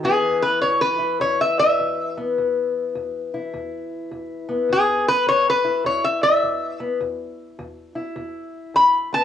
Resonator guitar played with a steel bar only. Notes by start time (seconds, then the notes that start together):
0.05 G#4
0.43 B4
0.62 C#5
0.81 B4
1.21 C#5
1.41 E5
1.60 E5
4.72 G#4
5.08 B4
5.28 C#5
5.49 B4
5.86 C#5
6.04 E5
6.23 E5
8.76 B5
9.14 A5